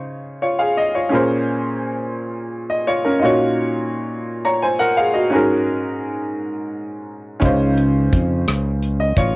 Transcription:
Already playing: grand piano C#3 D#4 F4 C5 C#5
0.42 grand piano F4 C#5
0.59 grand piano G#4 F5
0.77 grand piano D#5
0.95 grand piano F4 C#5
1.09 grand piano A#2 C#4 G#4 A#4
1.15 grand piano C5
2.70 grand piano D#5
2.87 grand piano F4 C#5
3.05 grand piano C#4 A#4
3.20 grand piano A#2 D#4 F4
3.24 grand piano F#4 C#5
4.45 grand piano C#5 A#5
4.62 grand piano C5 G#5
4.79 grand piano A#4 F#5
4.97 grand piano G#4 F5
5.14 grand piano F#4 D#5
5.30 grand piano G#2 C#4 F#4 G#4
5.35 grand piano A#4
7.40 fingered electric bass C#2, grand piano C#3 C#4 D#4 F4, kick, closed hi-hat
7.45 grand piano C5
7.77 closed hi-hat
8.12 fingered electric bass F2, kick, closed hi-hat
8.48 fingered electric bass C#2, cross-stick, closed hi-hat
8.82 closed hi-hat
9.00 grand piano D#5
9.17 fingered electric bass A1, grand piano F4 C#5, kick, closed hi-hat

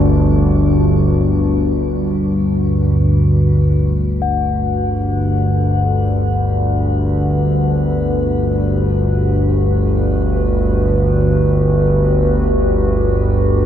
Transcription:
Already playing: synth drone G1 D2, analog synth pad G3 D4 F#4 B4
4.22 synth drone G1 D2, singing bowl F#5
4.28 analog synth pad F#4
4.50 analog synth pad G4

